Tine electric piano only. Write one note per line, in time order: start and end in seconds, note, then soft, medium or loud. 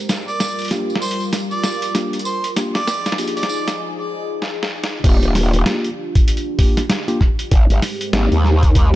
0.71 0.93 A#3 medium
0.71 0.93 D4 medium
0.71 0.93 F4 medium
0.71 0.93 G4 medium
1.95 2.17 A#3 medium
1.95 2.17 D4 medium
1.95 2.17 F4 medium
1.95 2.17 G4 medium
2.57 2.79 A#3 medium
2.57 2.79 D4 medium
2.57 2.79 F4 medium
2.57 2.79 G4 medium
3.18 3.41 A#3 medium
3.18 3.41 D4 medium
3.18 3.41 F4 medium
3.18 3.41 G4 medium
5.04 5.61 A#3 loud
5.04 5.61 D4 medium
5.04 5.61 F4 medium
5.04 5.61 G4 loud
5.66 5.88 A#3 medium
5.66 5.88 D4 medium
5.66 5.88 F4 medium
5.66 5.88 G4 medium
6.59 6.81 A#3 medium
6.59 6.81 D4 medium
6.59 6.81 F4 medium
6.59 6.81 G4 loud
7.08 7.18 A#3 loud
7.08 7.18 D4 medium
7.08 7.18 F4 medium
7.08 7.18 G4 loud
8.13 8.36 A#3 loud
8.13 8.36 C4 medium
8.13 8.36 D#4 medium
8.13 8.36 G4 loud